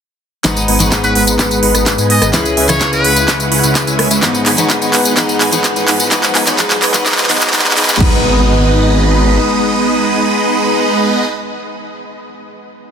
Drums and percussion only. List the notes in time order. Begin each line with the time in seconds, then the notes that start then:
0.45 kick, clap, closed hi-hat, tambourine
0.56 closed hi-hat, tambourine
0.68 open hi-hat
0.80 closed hi-hat, tambourine
0.92 kick, clap, closed hi-hat, tambourine
1.04 closed hi-hat, tambourine
1.15 open hi-hat
1.27 closed hi-hat, tambourine
1.39 kick, clap, closed hi-hat, tambourine
1.51 closed hi-hat, tambourine
1.63 open hi-hat
1.75 cross-stick, closed hi-hat, tambourine
1.86 kick, clap, closed hi-hat, tambourine
1.98 closed hi-hat, tambourine
2.10 open hi-hat
2.22 cross-stick, closed hi-hat, tambourine
2.34 kick, clap, closed hi-hat, tambourine
2.45 closed hi-hat, tambourine
2.57 open hi-hat
2.69 cross-stick, closed hi-hat, tambourine
2.81 kick, clap, closed hi-hat, tambourine
2.93 closed hi-hat, tambourine
3.04 open hi-hat
3.16 closed hi-hat, tambourine
3.28 kick, clap, closed hi-hat, tambourine
3.40 closed hi-hat, tambourine
3.52 open hi-hat
3.63 closed hi-hat, tambourine
3.75 kick, clap, closed hi-hat, tambourine
3.87 closed hi-hat, tambourine
3.99 cross-stick, open hi-hat
4.11 closed hi-hat, tambourine
4.23 kick, clap, closed hi-hat, tambourine
4.34 closed hi-hat, tambourine
4.46 clap, open hi-hat
4.58 closed hi-hat, tambourine
4.70 kick, clap, closed hi-hat, tambourine
4.82 closed hi-hat, tambourine
4.93 clap, open hi-hat
5.05 closed hi-hat, tambourine
5.17 kick, clap, closed hi-hat, tambourine
5.29 closed hi-hat, tambourine
5.41 clap, open hi-hat
5.52 closed hi-hat, tambourine
5.64 kick, clap, closed hi-hat, tambourine
5.76 closed hi-hat, tambourine
5.88 clap, open hi-hat
6.00 closed hi-hat, tambourine
6.11 kick, clap, closed hi-hat, tambourine
6.23 clap, closed hi-hat, tambourine
6.35 clap, open hi-hat
6.47 clap, closed hi-hat, tambourine
6.59 kick, clap, closed hi-hat, tambourine
6.70 clap, closed hi-hat, tambourine
6.82 clap, open hi-hat
6.94 clap, closed hi-hat, tambourine
7.06 kick, clap, closed hi-hat, tambourine
7.12 clap
7.18 clap, closed hi-hat, tambourine
7.24 clap
7.30 clap, open hi-hat
7.35 clap
7.41 clap, closed hi-hat, tambourine
7.47 clap
7.53 kick, clap, open hi-hat, tambourine
7.59 clap
7.65 clap, closed hi-hat, tambourine
7.71 clap
7.77 clap, open hi-hat
7.83 clap
7.89 clap, closed hi-hat, tambourine
7.95 clap
8.00 kick, crash